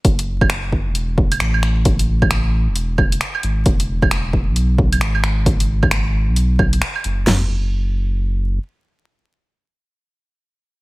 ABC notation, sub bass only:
X:1
M:4/4
L:1/16
Q:"Swing 16ths" 1/4=133
K:F#m
V:1 name="Sub bass" clef=bass
F,,,6- F,,, E,,,4- E,,, A,,,4- | A,,,6- A,,, E,,,4- E,,, z2 G,,,2 | E,,,6- E,,, B,,,4- B,,, G,,,4- | G,,,6- G,,, B,,,4- B,,, z2 F,,,2 |
F,,,12 z4 | z16 |]